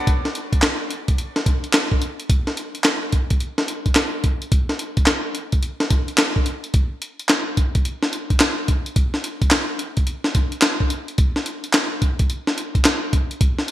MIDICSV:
0, 0, Header, 1, 2, 480
1, 0, Start_track
1, 0, Tempo, 555556
1, 63, Time_signature, 4, 2, 24, 8
1, 11848, End_track
2, 0, Start_track
2, 0, Title_t, "Drums"
2, 62, Note_on_c, 9, 36, 113
2, 63, Note_on_c, 9, 42, 80
2, 148, Note_off_c, 9, 36, 0
2, 149, Note_off_c, 9, 42, 0
2, 217, Note_on_c, 9, 38, 55
2, 304, Note_off_c, 9, 38, 0
2, 304, Note_on_c, 9, 42, 74
2, 390, Note_off_c, 9, 42, 0
2, 454, Note_on_c, 9, 36, 90
2, 456, Note_on_c, 9, 42, 52
2, 536, Note_on_c, 9, 39, 80
2, 541, Note_off_c, 9, 36, 0
2, 542, Note_off_c, 9, 42, 0
2, 542, Note_on_c, 9, 38, 105
2, 543, Note_on_c, 9, 42, 62
2, 622, Note_off_c, 9, 39, 0
2, 628, Note_off_c, 9, 38, 0
2, 629, Note_off_c, 9, 42, 0
2, 782, Note_on_c, 9, 42, 69
2, 868, Note_off_c, 9, 42, 0
2, 935, Note_on_c, 9, 42, 61
2, 936, Note_on_c, 9, 36, 94
2, 1021, Note_off_c, 9, 42, 0
2, 1022, Note_off_c, 9, 36, 0
2, 1023, Note_on_c, 9, 42, 63
2, 1109, Note_off_c, 9, 42, 0
2, 1175, Note_on_c, 9, 38, 69
2, 1261, Note_off_c, 9, 38, 0
2, 1263, Note_on_c, 9, 36, 95
2, 1264, Note_on_c, 9, 42, 74
2, 1349, Note_off_c, 9, 36, 0
2, 1351, Note_off_c, 9, 42, 0
2, 1415, Note_on_c, 9, 42, 41
2, 1496, Note_on_c, 9, 39, 89
2, 1501, Note_off_c, 9, 42, 0
2, 1501, Note_on_c, 9, 42, 66
2, 1503, Note_on_c, 9, 38, 114
2, 1583, Note_off_c, 9, 39, 0
2, 1587, Note_off_c, 9, 42, 0
2, 1589, Note_off_c, 9, 38, 0
2, 1655, Note_on_c, 9, 36, 79
2, 1742, Note_off_c, 9, 36, 0
2, 1742, Note_on_c, 9, 42, 66
2, 1828, Note_off_c, 9, 42, 0
2, 1897, Note_on_c, 9, 42, 49
2, 1983, Note_off_c, 9, 42, 0
2, 1983, Note_on_c, 9, 36, 117
2, 1983, Note_on_c, 9, 42, 85
2, 2070, Note_off_c, 9, 36, 0
2, 2070, Note_off_c, 9, 42, 0
2, 2135, Note_on_c, 9, 38, 55
2, 2222, Note_off_c, 9, 38, 0
2, 2222, Note_on_c, 9, 42, 77
2, 2308, Note_off_c, 9, 42, 0
2, 2374, Note_on_c, 9, 42, 48
2, 2453, Note_on_c, 9, 39, 77
2, 2460, Note_off_c, 9, 42, 0
2, 2460, Note_on_c, 9, 38, 102
2, 2460, Note_on_c, 9, 42, 66
2, 2540, Note_off_c, 9, 39, 0
2, 2546, Note_off_c, 9, 38, 0
2, 2547, Note_off_c, 9, 42, 0
2, 2700, Note_on_c, 9, 42, 70
2, 2702, Note_on_c, 9, 36, 80
2, 2786, Note_off_c, 9, 42, 0
2, 2789, Note_off_c, 9, 36, 0
2, 2854, Note_on_c, 9, 42, 58
2, 2857, Note_on_c, 9, 36, 92
2, 2941, Note_off_c, 9, 42, 0
2, 2941, Note_on_c, 9, 42, 61
2, 2944, Note_off_c, 9, 36, 0
2, 3028, Note_off_c, 9, 42, 0
2, 3093, Note_on_c, 9, 38, 73
2, 3179, Note_off_c, 9, 38, 0
2, 3181, Note_on_c, 9, 42, 73
2, 3267, Note_off_c, 9, 42, 0
2, 3333, Note_on_c, 9, 36, 72
2, 3333, Note_on_c, 9, 42, 44
2, 3413, Note_on_c, 9, 39, 80
2, 3418, Note_off_c, 9, 42, 0
2, 3418, Note_on_c, 9, 42, 66
2, 3420, Note_off_c, 9, 36, 0
2, 3420, Note_on_c, 9, 38, 105
2, 3500, Note_off_c, 9, 39, 0
2, 3504, Note_off_c, 9, 42, 0
2, 3506, Note_off_c, 9, 38, 0
2, 3661, Note_on_c, 9, 42, 66
2, 3662, Note_on_c, 9, 36, 85
2, 3747, Note_off_c, 9, 42, 0
2, 3749, Note_off_c, 9, 36, 0
2, 3817, Note_on_c, 9, 42, 48
2, 3903, Note_off_c, 9, 42, 0
2, 3903, Note_on_c, 9, 36, 112
2, 3903, Note_on_c, 9, 42, 84
2, 3989, Note_off_c, 9, 42, 0
2, 3990, Note_off_c, 9, 36, 0
2, 4055, Note_on_c, 9, 38, 56
2, 4140, Note_on_c, 9, 42, 71
2, 4141, Note_off_c, 9, 38, 0
2, 4227, Note_off_c, 9, 42, 0
2, 4293, Note_on_c, 9, 42, 52
2, 4295, Note_on_c, 9, 36, 88
2, 4373, Note_on_c, 9, 39, 77
2, 4379, Note_on_c, 9, 38, 106
2, 4380, Note_off_c, 9, 42, 0
2, 4380, Note_on_c, 9, 42, 64
2, 4381, Note_off_c, 9, 36, 0
2, 4459, Note_off_c, 9, 39, 0
2, 4466, Note_off_c, 9, 38, 0
2, 4466, Note_off_c, 9, 42, 0
2, 4619, Note_on_c, 9, 42, 69
2, 4706, Note_off_c, 9, 42, 0
2, 4772, Note_on_c, 9, 42, 56
2, 4776, Note_on_c, 9, 36, 92
2, 4859, Note_off_c, 9, 42, 0
2, 4860, Note_on_c, 9, 42, 64
2, 4862, Note_off_c, 9, 36, 0
2, 4947, Note_off_c, 9, 42, 0
2, 5013, Note_on_c, 9, 38, 72
2, 5100, Note_off_c, 9, 38, 0
2, 5102, Note_on_c, 9, 42, 78
2, 5103, Note_on_c, 9, 36, 97
2, 5188, Note_off_c, 9, 42, 0
2, 5189, Note_off_c, 9, 36, 0
2, 5254, Note_on_c, 9, 42, 45
2, 5336, Note_on_c, 9, 39, 92
2, 5340, Note_off_c, 9, 42, 0
2, 5341, Note_on_c, 9, 42, 62
2, 5343, Note_on_c, 9, 38, 113
2, 5422, Note_off_c, 9, 39, 0
2, 5427, Note_off_c, 9, 42, 0
2, 5429, Note_off_c, 9, 38, 0
2, 5496, Note_on_c, 9, 36, 80
2, 5580, Note_on_c, 9, 42, 71
2, 5582, Note_off_c, 9, 36, 0
2, 5667, Note_off_c, 9, 42, 0
2, 5736, Note_on_c, 9, 42, 47
2, 5821, Note_off_c, 9, 42, 0
2, 5821, Note_on_c, 9, 42, 80
2, 5823, Note_on_c, 9, 36, 114
2, 5907, Note_off_c, 9, 42, 0
2, 5909, Note_off_c, 9, 36, 0
2, 6063, Note_on_c, 9, 42, 74
2, 6149, Note_off_c, 9, 42, 0
2, 6216, Note_on_c, 9, 42, 51
2, 6297, Note_on_c, 9, 39, 76
2, 6303, Note_off_c, 9, 42, 0
2, 6303, Note_on_c, 9, 38, 99
2, 6304, Note_on_c, 9, 42, 66
2, 6383, Note_off_c, 9, 39, 0
2, 6390, Note_off_c, 9, 38, 0
2, 6390, Note_off_c, 9, 42, 0
2, 6543, Note_on_c, 9, 36, 84
2, 6543, Note_on_c, 9, 42, 73
2, 6629, Note_off_c, 9, 42, 0
2, 6630, Note_off_c, 9, 36, 0
2, 6696, Note_on_c, 9, 42, 56
2, 6697, Note_on_c, 9, 36, 91
2, 6782, Note_off_c, 9, 42, 0
2, 6784, Note_off_c, 9, 36, 0
2, 6784, Note_on_c, 9, 42, 67
2, 6870, Note_off_c, 9, 42, 0
2, 6934, Note_on_c, 9, 38, 72
2, 7020, Note_off_c, 9, 38, 0
2, 7023, Note_on_c, 9, 42, 73
2, 7109, Note_off_c, 9, 42, 0
2, 7174, Note_on_c, 9, 36, 80
2, 7174, Note_on_c, 9, 42, 42
2, 7256, Note_on_c, 9, 39, 88
2, 7260, Note_off_c, 9, 42, 0
2, 7260, Note_on_c, 9, 42, 59
2, 7261, Note_off_c, 9, 36, 0
2, 7262, Note_on_c, 9, 38, 107
2, 7342, Note_off_c, 9, 39, 0
2, 7347, Note_off_c, 9, 42, 0
2, 7349, Note_off_c, 9, 38, 0
2, 7502, Note_on_c, 9, 42, 67
2, 7503, Note_on_c, 9, 36, 91
2, 7588, Note_off_c, 9, 42, 0
2, 7589, Note_off_c, 9, 36, 0
2, 7657, Note_on_c, 9, 42, 51
2, 7742, Note_off_c, 9, 42, 0
2, 7742, Note_on_c, 9, 36, 109
2, 7742, Note_on_c, 9, 42, 83
2, 7828, Note_off_c, 9, 42, 0
2, 7829, Note_off_c, 9, 36, 0
2, 7896, Note_on_c, 9, 38, 53
2, 7982, Note_off_c, 9, 38, 0
2, 7983, Note_on_c, 9, 42, 77
2, 8069, Note_off_c, 9, 42, 0
2, 8135, Note_on_c, 9, 36, 87
2, 8136, Note_on_c, 9, 42, 55
2, 8214, Note_on_c, 9, 39, 86
2, 8220, Note_on_c, 9, 38, 101
2, 8221, Note_off_c, 9, 42, 0
2, 8221, Note_on_c, 9, 42, 69
2, 8222, Note_off_c, 9, 36, 0
2, 8300, Note_off_c, 9, 39, 0
2, 8307, Note_off_c, 9, 38, 0
2, 8307, Note_off_c, 9, 42, 0
2, 8460, Note_on_c, 9, 42, 69
2, 8546, Note_off_c, 9, 42, 0
2, 8612, Note_on_c, 9, 42, 57
2, 8616, Note_on_c, 9, 36, 86
2, 8698, Note_off_c, 9, 42, 0
2, 8699, Note_on_c, 9, 42, 62
2, 8702, Note_off_c, 9, 36, 0
2, 8785, Note_off_c, 9, 42, 0
2, 8851, Note_on_c, 9, 38, 69
2, 8937, Note_off_c, 9, 38, 0
2, 8940, Note_on_c, 9, 42, 74
2, 8941, Note_on_c, 9, 36, 93
2, 9026, Note_off_c, 9, 42, 0
2, 9028, Note_off_c, 9, 36, 0
2, 9089, Note_on_c, 9, 42, 45
2, 9172, Note_on_c, 9, 39, 94
2, 9175, Note_off_c, 9, 42, 0
2, 9176, Note_on_c, 9, 42, 62
2, 9178, Note_on_c, 9, 38, 105
2, 9258, Note_off_c, 9, 39, 0
2, 9263, Note_off_c, 9, 42, 0
2, 9265, Note_off_c, 9, 38, 0
2, 9335, Note_on_c, 9, 36, 70
2, 9419, Note_on_c, 9, 42, 77
2, 9421, Note_off_c, 9, 36, 0
2, 9506, Note_off_c, 9, 42, 0
2, 9575, Note_on_c, 9, 42, 47
2, 9660, Note_off_c, 9, 42, 0
2, 9660, Note_on_c, 9, 42, 78
2, 9662, Note_on_c, 9, 36, 120
2, 9746, Note_off_c, 9, 42, 0
2, 9749, Note_off_c, 9, 36, 0
2, 9815, Note_on_c, 9, 38, 58
2, 9901, Note_off_c, 9, 38, 0
2, 9901, Note_on_c, 9, 42, 79
2, 9987, Note_off_c, 9, 42, 0
2, 10055, Note_on_c, 9, 42, 54
2, 10137, Note_on_c, 9, 39, 83
2, 10142, Note_off_c, 9, 42, 0
2, 10143, Note_on_c, 9, 38, 100
2, 10144, Note_on_c, 9, 42, 67
2, 10223, Note_off_c, 9, 39, 0
2, 10230, Note_off_c, 9, 38, 0
2, 10230, Note_off_c, 9, 42, 0
2, 10384, Note_on_c, 9, 36, 87
2, 10384, Note_on_c, 9, 42, 64
2, 10470, Note_off_c, 9, 36, 0
2, 10470, Note_off_c, 9, 42, 0
2, 10535, Note_on_c, 9, 42, 57
2, 10537, Note_on_c, 9, 36, 96
2, 10621, Note_off_c, 9, 42, 0
2, 10624, Note_off_c, 9, 36, 0
2, 10624, Note_on_c, 9, 42, 65
2, 10711, Note_off_c, 9, 42, 0
2, 10777, Note_on_c, 9, 38, 68
2, 10864, Note_off_c, 9, 38, 0
2, 10867, Note_on_c, 9, 42, 74
2, 10953, Note_off_c, 9, 42, 0
2, 11016, Note_on_c, 9, 36, 82
2, 11017, Note_on_c, 9, 42, 42
2, 11099, Note_on_c, 9, 39, 86
2, 11102, Note_off_c, 9, 36, 0
2, 11103, Note_off_c, 9, 42, 0
2, 11103, Note_on_c, 9, 42, 64
2, 11105, Note_on_c, 9, 38, 111
2, 11185, Note_off_c, 9, 39, 0
2, 11190, Note_off_c, 9, 42, 0
2, 11192, Note_off_c, 9, 38, 0
2, 11344, Note_on_c, 9, 42, 70
2, 11345, Note_on_c, 9, 36, 96
2, 11431, Note_off_c, 9, 36, 0
2, 11431, Note_off_c, 9, 42, 0
2, 11499, Note_on_c, 9, 42, 51
2, 11584, Note_off_c, 9, 42, 0
2, 11584, Note_on_c, 9, 36, 120
2, 11584, Note_on_c, 9, 42, 83
2, 11671, Note_off_c, 9, 36, 0
2, 11671, Note_off_c, 9, 42, 0
2, 11738, Note_on_c, 9, 38, 56
2, 11821, Note_on_c, 9, 42, 79
2, 11824, Note_off_c, 9, 38, 0
2, 11848, Note_off_c, 9, 42, 0
2, 11848, End_track
0, 0, End_of_file